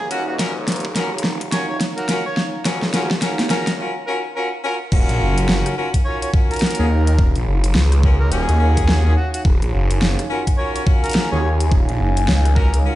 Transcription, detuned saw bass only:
0.00 0.38 D#1 medium
0.39 1.22 D#1 loud
1.24 1.79 D#1 loud
2.66 3.49 D#1 loud
3.50 3.79 F#1 loud
4.92 5.07 D#1 loud
5.09 5.19 A#1 medium
5.20 5.47 F#1 loud
5.49 5.63 F#1 loud
6.79 7.17 D#2 loud
7.18 7.33 D#1 loud
7.36 7.45 A#1 medium
7.47 7.73 F#1 loud
7.75 8.30 C#2 loud
8.31 8.46 D#1 loud
8.49 8.86 D#2 loud
8.88 9.15 D#2 loud
9.45 9.59 D#1 loud
9.62 9.71 A#1 medium
9.73 10.00 F#1 loud
10.02 10.16 F#1 loud
11.32 11.70 D#2 loud
11.71 11.86 D#1 medium
11.89 11.98 A#1 loud
12.00 12.26 F#1 loud
12.28 12.83 C#2 loud

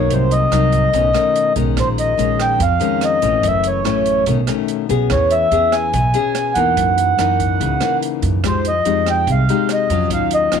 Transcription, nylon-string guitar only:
0.00 0.49 F#3 medium
0.00 0.49 A#3 medium
0.00 0.50 D#4 medium
0.11 0.92 C3 soft
0.52 0.92 F#3 medium
0.52 0.93 A#3 medium
0.52 0.93 D#4 medium
0.93 1.75 B2 soft
0.93 1.11 D#3 soft
0.93 1.11 A3 soft
0.93 1.12 C#4 medium
1.13 1.52 D#3 medium
1.13 1.53 A3 medium
1.13 1.53 C#4 medium
1.56 2.15 D#3 medium
1.56 2.16 G#3 soft
1.56 2.16 C#4 medium
1.77 2.58 A#2 soft
2.17 2.60 D#3 medium
2.17 2.60 G#3 soft
2.17 2.60 C#4 medium
2.59 3.41 F2 medium
2.80 3.19 D#3 medium
2.80 3.19 G#3 medium
2.80 3.20 C#4 medium
3.22 3.82 E3 medium
3.22 3.82 A3 medium
3.22 3.82 C#4 medium
3.42 4.24 F#2 soft
3.84 4.25 E3 medium
3.84 4.25 A3 medium
3.84 4.26 C#4 medium
4.27 5.08 B2 medium
4.27 4.40 D#3 medium
4.27 4.40 A3 medium
4.27 4.40 C#4 medium
4.48 4.87 D#3 medium
4.48 4.87 A3 medium
4.48 4.87 C#4 medium
4.89 5.49 B3 medium
4.89 5.49 C#4 medium
4.89 5.49 G#4 medium
5.09 5.91 E3 soft
5.51 5.93 B3 medium
5.51 5.94 C#4 medium
5.51 5.94 G#4 medium
5.93 6.75 B2 medium
6.14 6.53 B3 medium
6.14 6.53 C#4 medium
6.14 6.53 G#4 medium
6.56 7.15 E3 medium
6.56 7.16 A#3 medium
6.56 7.16 D#4 medium
6.76 7.58 F#2 soft
7.18 7.78 E3 medium
7.18 7.78 A#3 medium
7.18 7.78 D#4 medium
7.61 8.42 C#3 soft
7.81 8.40 E3 medium
7.81 8.40 A#3 medium
7.81 8.40 D#4 medium
8.44 9.25 F3 soft
8.44 8.71 G#3 soft
8.44 8.71 D#4 soft
8.44 8.71 G4 soft
8.85 9.44 G#3 medium
8.85 9.45 D#4 medium
8.85 9.45 G4 medium
9.28 10.08 C3 medium
9.50 9.87 G#3 medium
9.50 9.87 D#4 medium
9.50 9.87 G4 medium
9.91 10.49 F#3 medium
9.91 10.50 C#4 medium
9.91 10.49 F4 medium
10.11 10.60 D#3 soft
10.52 10.60 F#3 medium
10.52 10.60 C#4 soft
10.52 10.60 F4 medium

